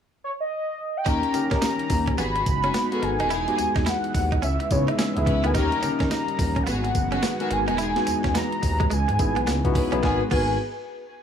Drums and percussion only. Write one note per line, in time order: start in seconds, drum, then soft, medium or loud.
1.06 kick loud
1.06 closed hi-hat medium
1.06 tambourine medium
1.23 closed hi-hat medium
1.34 closed hi-hat medium
1.34 tambourine medium
1.51 kick loud
1.51 snare medium
1.51 closed hi-hat medium
1.62 snare loud
1.62 closed hi-hat medium
1.62 tambourine loud
1.79 closed hi-hat medium
1.90 kick medium
1.90 open hi-hat medium
1.90 tambourine medium
2.07 kick loud
2.07 closed hi-hat medium
2.18 closed hi-hat medium
2.18 tambourine medium
2.36 closed hi-hat medium
2.46 kick loud
2.46 closed hi-hat medium
2.46 tambourine medium
2.64 closed hi-hat soft
2.74 snare loud
2.74 closed hi-hat medium
2.74 tambourine medium
2.92 closed hi-hat medium
3.03 closed hi-hat medium
3.20 closed hi-hat medium
3.31 closed hi-hat medium
3.31 tambourine medium
3.48 closed hi-hat medium
3.59 closed hi-hat medium
3.59 tambourine medium
3.76 kick loud
3.76 snare medium
3.76 closed hi-hat medium
3.86 snare loud
3.86 closed hi-hat medium
3.86 tambourine loud
4.04 closed hi-hat medium
4.15 kick medium
4.15 open hi-hat medium
4.15 tambourine medium
4.32 kick loud
4.32 closed hi-hat medium
4.43 closed hi-hat medium
4.43 tambourine medium
4.60 closed hi-hat medium
4.71 kick medium
4.71 closed hi-hat medium
4.71 tambourine medium
4.88 closed hi-hat medium
4.99 snare loud
4.99 closed hi-hat medium
4.99 tambourine medium
5.17 closed hi-hat medium
5.27 kick loud
5.27 closed hi-hat medium
5.44 closed hi-hat medium
5.55 kick loud
5.55 closed hi-hat medium
5.55 tambourine medium
5.72 closed hi-hat medium
5.83 closed hi-hat medium
5.83 tambourine medium
6.00 kick loud
6.00 snare medium
6.00 closed hi-hat medium
6.11 snare loud
6.11 closed hi-hat medium
6.11 tambourine loud
6.28 closed hi-hat medium
6.39 kick medium
6.39 open hi-hat medium
6.39 tambourine medium
6.56 kick medium
6.56 closed hi-hat medium
6.67 closed hi-hat medium
6.67 tambourine medium
6.84 closed hi-hat medium
6.95 kick medium
6.95 closed hi-hat medium
6.95 tambourine medium
7.12 closed hi-hat medium
7.23 snare loud
7.23 closed hi-hat medium
7.23 tambourine medium
7.40 closed hi-hat medium
7.51 closed hi-hat medium
7.68 closed hi-hat medium
7.79 closed hi-hat medium
7.79 tambourine medium
7.96 snare medium
7.96 closed hi-hat medium
8.07 closed hi-hat medium
8.07 tambourine medium
8.24 kick loud
8.24 snare medium
8.24 closed hi-hat medium
8.35 snare loud
8.35 closed hi-hat medium
8.35 tambourine loud
8.52 closed hi-hat medium
8.63 kick medium
8.63 open hi-hat medium
8.63 tambourine medium
8.80 kick medium
8.80 closed hi-hat medium
8.91 closed hi-hat medium
8.91 tambourine medium
9.09 closed hi-hat medium
9.19 kick loud
9.19 closed hi-hat medium
9.19 tambourine medium
9.37 closed hi-hat medium
9.47 snare loud
9.47 closed hi-hat medium
9.47 tambourine medium
9.65 kick medium
9.65 closed hi-hat medium
9.75 kick medium
9.75 open hi-hat medium
9.93 closed hi-hat medium
10.03 kick loud
10.03 snare medium
10.31 kick loud
10.31 crash medium